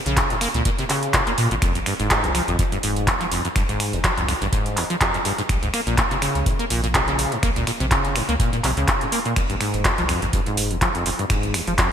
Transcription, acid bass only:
0.06 0.32 C#3 medium
0.30 0.36 G#2 medium
0.41 0.48 A#3 medium
0.54 0.64 A#2 medium
0.65 0.70 A#2 medium
0.79 0.85 C3 medium
0.90 1.15 C#3 medium
1.14 1.21 G#2 medium
1.27 1.33 A#3 medium
1.38 1.49 A#2 medium
1.51 1.55 A#2 medium
1.62 1.73 F2 medium
1.75 1.79 F2 medium
1.86 1.94 G2 medium
2.00 2.25 G#2 medium
2.24 2.30 D#2 medium
2.35 2.42 F3 medium
2.48 2.57 F2 medium
2.72 2.78 G2 medium
2.83 3.09 G#2 medium
3.07 3.15 D#2 medium
3.21 3.27 F3 medium
3.32 3.42 F2 medium
3.45 3.48 F2 medium
3.56 3.63 G2 medium
3.69 3.94 G#2 medium
3.93 3.99 D#2 medium
4.04 4.11 F3 medium
4.17 4.26 F2 medium
4.28 4.33 F2 medium
4.42 4.48 G2 medium
4.52 4.78 G#2 medium
4.77 4.84 D#2 medium
4.90 4.96 F3 medium
5.01 5.12 F2 medium
5.14 5.18 F2 medium
5.25 5.32 G2 medium
5.38 5.42 G#2 medium
5.63 5.69 G#2 medium
5.74 5.81 A#3 medium
5.87 5.96 A#2 medium
5.98 6.02 A#2 medium
6.11 6.17 C3 medium
6.22 6.48 C#3 medium
6.46 6.53 G#2 medium
6.59 6.65 A#3 medium
6.70 6.81 A#2 medium
6.83 6.87 A#2 medium
6.94 7.02 C3 medium
7.08 7.33 C#3 medium
7.32 7.38 G#2 medium
7.43 7.50 A#3 medium
7.56 7.65 A#2 medium
7.67 7.71 A#2 medium
7.80 7.86 C3 medium
7.91 8.17 C#3 medium
8.15 8.23 G#2 medium
8.29 8.35 A#3 medium
8.40 8.50 A#2 medium
8.53 8.56 A#2 medium
8.64 8.71 C3 medium
8.77 9.03 C#3 medium
9.01 9.07 G#2 medium
9.12 9.19 A#3 medium
9.25 9.34 A#2 medium
9.36 9.41 F2 medium
9.50 9.56 G2 medium
9.61 9.86 G#2 medium
9.85 9.92 D#2 medium
9.98 10.04 F3 medium
10.09 10.20 F2 medium
10.22 10.26 F2 medium
10.33 10.40 G2 medium
10.46 10.72 G#2 medium
10.71 10.77 D#2 medium
10.82 10.89 F3 medium
10.95 11.04 F2 medium
11.06 11.10 F2 medium
11.19 11.25 G2 medium
11.30 11.56 G#2 medium
11.54 11.62 D#2 medium
11.68 11.73 F3 medium
11.79 11.89 F2 medium

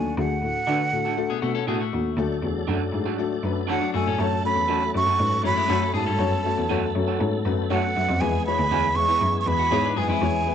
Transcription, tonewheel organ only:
2.18 4.17 F#3 medium
2.18 4.17 D4 medium
2.18 4.17 A4 medium
4.18 8.17 F#3 medium
4.18 8.17 A3 medium
4.18 6.18 C#4 medium
4.18 8.17 A4 medium
6.18 10.18 B3 medium
8.19 10.55 E3 medium
8.19 10.55 G#3 medium
8.19 10.55 G#4 medium
10.22 10.55 C#4 medium

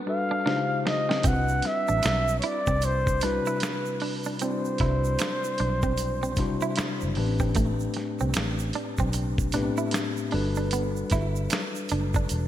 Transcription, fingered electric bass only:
1.25 1.60 C2 loud
1.90 2.02 A1 medium
2.05 2.39 B1 medium
2.68 3.38 C2 medium
4.81 5.15 C2 loud
5.60 6.59 B1 medium
6.79 muted fingered electric bass stroke soft
7.03 7.16 F#1 medium
7.18 7.87 A1 loud
8.21 8.34 C2 medium
8.37 8.71 A1 medium
9.00 9.69 B1 medium
10.34 11.03 G1 loud
11.13 11.47 G1 loud
11.92 12.26 F#1 medium
12.31 12.48 E1 medium

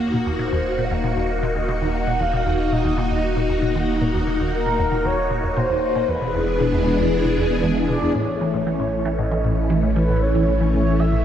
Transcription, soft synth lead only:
0.39 0.86 C5 medium
0.84 0.93 F#5 medium
0.91 1.44 F5 loud
1.43 1.94 D#5 loud
1.95 2.22 F#5 loud
2.21 2.74 F5 loud
2.72 3.76 D#5 medium
4.53 5.07 A#4 loud
5.05 5.58 C#5 loud
5.57 6.10 C5 loud
6.09 7.64 B4 loud
7.89 8.13 D5 medium
9.18 9.70 D#5 loud
9.96 10.23 B4 medium
10.22 10.73 C#5 loud
10.74 11.01 C#5 loud
10.99 11.25 E5 loud

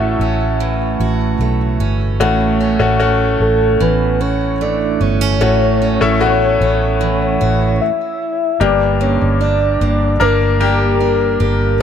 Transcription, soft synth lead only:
0.00 1.38 E5 loud
3.42 3.83 A4 medium
3.82 4.22 B4 medium
4.21 4.63 C#5 medium
4.62 5.03 D5 loud
5.01 7.81 C#5 loud
7.81 8.62 E5 loud
8.61 9.03 D5 medium
9.01 9.42 C#5 medium
9.41 10.22 D5 loud
10.21 11.41 A#4 medium
11.41 11.82 A#4 medium

